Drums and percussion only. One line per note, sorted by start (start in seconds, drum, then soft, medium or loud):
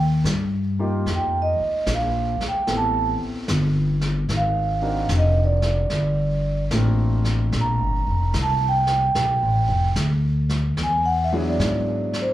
0.25 snare medium
0.25 hi-hat pedal medium
1.06 brush sweep soft
1.06 snare soft
1.87 snare medium
1.87 hi-hat pedal medium
2.41 snare soft
2.67 brush sweep soft
2.67 snare soft
3.48 snare medium
3.48 hi-hat pedal medium
4.01 snare soft
4.29 brush sweep soft
4.29 snare soft
5.09 snare medium
5.09 hi-hat pedal medium
5.62 snare soft
5.90 brush sweep soft
5.90 snare soft
6.71 snare medium
6.71 hi-hat pedal medium
7.24 snare soft
7.52 brush sweep medium
7.52 snare soft
8.34 snare medium
8.34 hi-hat pedal medium
8.87 snare soft
9.15 brush sweep soft
9.15 snare soft
9.96 snare medium
9.96 hi-hat pedal medium
10.49 snare soft
10.77 brush sweep soft
10.77 snare soft
11.60 snare medium
11.60 hi-hat pedal medium
12.13 snare soft